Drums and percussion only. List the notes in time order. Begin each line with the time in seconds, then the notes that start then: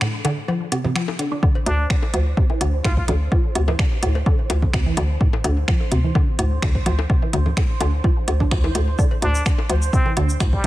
0.01 finger snap, low woodblock
0.25 closed hi-hat, high bongo, low woodblock
0.48 cowbell, low woodblock
0.72 closed hi-hat, high bongo, low woodblock
0.85 low conga
0.96 finger snap, low woodblock
1.08 high bongo
1.19 closed hi-hat, low woodblock
1.43 kick, low woodblock
1.55 cowbell
1.66 closed hi-hat, high bongo, low woodblock
1.90 finger snap, kick, low woodblock
2.03 high bongo
2.14 closed hi-hat, low woodblock
2.37 kick, low woodblock
2.50 high bongo
2.61 closed hi-hat, low woodblock
2.84 finger snap, kick, cowbell, high bongo, low woodblock
2.97 kick
3.08 closed hi-hat, low conga, low woodblock
3.32 kick, high bongo, low woodblock
3.55 closed hi-hat, low woodblock
3.68 high bongo, low conga
3.79 finger snap, kick, low woodblock
4.03 closed hi-hat, low woodblock
4.15 cowbell, high bongo
4.26 kick, low woodblock
4.50 closed hi-hat, high bongo, low woodblock
4.62 kick, low conga
4.73 finger snap, kick, low woodblock
4.97 closed hi-hat, high bongo, low woodblock
5.21 kick, low woodblock
5.33 high bongo
5.44 closed hi-hat, cowbell, low woodblock
5.68 finger snap, kick, low woodblock
5.80 high bongo
5.92 closed hi-hat, low woodblock
6.15 kick, high bongo, low woodblock
6.39 closed hi-hat, low woodblock
6.62 finger snap, kick, high bongo, low woodblock
6.75 kick, cowbell
6.86 closed hi-hat, low conga, low woodblock
6.99 high bongo
7.10 kick, low woodblock
7.33 closed hi-hat, low woodblock
7.46 high bongo, low conga
7.57 finger snap, kick, low woodblock
7.81 closed hi-hat, high bongo, low woodblock
8.04 kick, cowbell, low woodblock
8.28 closed hi-hat, high bongo, low woodblock
8.40 kick, low conga
8.51 finger snap, kick, low woodblock
8.64 high bongo
8.75 closed hi-hat, low woodblock
8.99 kick, cabasa, low woodblock
9.11 cowbell
9.22 closed hi-hat, high bongo, low woodblock
9.35 cabasa
9.46 finger snap, kick, cabasa, low woodblock
9.58 high bongo
9.69 closed hi-hat, low woodblock
9.82 cabasa
9.93 kick, cabasa, low woodblock
10.06 high bongo
10.17 closed hi-hat, low woodblock
10.29 cabasa
10.40 finger snap, kick, cowbell, high bongo, cabasa, low woodblock
10.53 kick